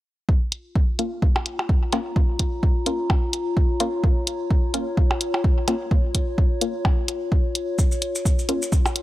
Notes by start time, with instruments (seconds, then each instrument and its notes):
0.29 ambient pad F4, kick
0.52 closed hi-hat
0.75 kick
0.90 ambient pad C#5
0.98 synth stab A#3 C#4 F4, ambient pad A#5, closed hi-hat
1.22 kick
1.36 percussion blips
1.46 closed hi-hat
1.59 percussion blips
1.69 kick
1.93 synth stab A#3 C#4 F4, closed hi-hat, percussion blips
2.16 kick
2.39 kick, closed hi-hat
2.63 kick
2.86 synth stab A#3 C#4 F4, closed hi-hat
3.10 kick, percussion blips
3.33 closed hi-hat
3.57 kick
3.80 synth stab A#3 C#4 F4, closed hi-hat
4.04 kick
4.27 closed hi-hat
4.50 kick
4.74 synth stab A#3 C#4 F4, closed hi-hat
4.97 kick
5.11 percussion blips
5.21 closed hi-hat
5.34 percussion blips
5.44 kick
5.68 synth stab A#3 C#4 F4, closed hi-hat, percussion blips
5.91 kick
6.15 kick, closed hi-hat
6.38 kick
6.61 synth stab A#3 C#4 F4, closed hi-hat
6.85 kick, percussion blips
7.08 closed hi-hat
7.32 kick
7.55 closed hi-hat
7.79 kick, maracas
7.91 maracas
8.02 closed hi-hat
8.15 ambient pad C6, maracas
8.25 kick, maracas
8.39 maracas
8.49 synth stab A#3 C#4 F4, closed hi-hat
8.62 maracas
8.72 kick, maracas
8.86 percussion blips, maracas
8.96 closed hi-hat